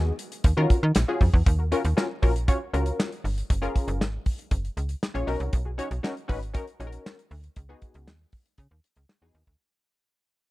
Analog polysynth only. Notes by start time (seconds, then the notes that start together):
Already playing: B3 D#4 F#4 G#4
0.57 C#4 F4 F#4 A#4
1.08 C#4 F4 F#4 G#4
1.59 F#4 A#4
1.72 C#4 F4 F#4 A#4
1.97 C#4 F4 F#4 A#4
2.22 C#4 F4 F#4 A#4
2.48 C#4 F4 F#4 C#5
2.73 C#4 F4 F#4 A#4
3.62 C#4 F4 G#4 A#4
5.14 C#4 F4 G#4 C#5
5.27 C#4 D#4 F#4 A#4
5.65 F#4 G#4
5.78 C#4 D#4 F#4 C#5
6.03 C#4 D#4 F#4 A#4
6.28 C#4 D#4 F#4 B4
6.54 C#4 D#4 F#4 A#4
6.80 C#4 D#4 F#4 G#4
6.87 A#4
7.69 B3 D#4 F#4 G#4
9.22 B3 D#4 F#4 G#4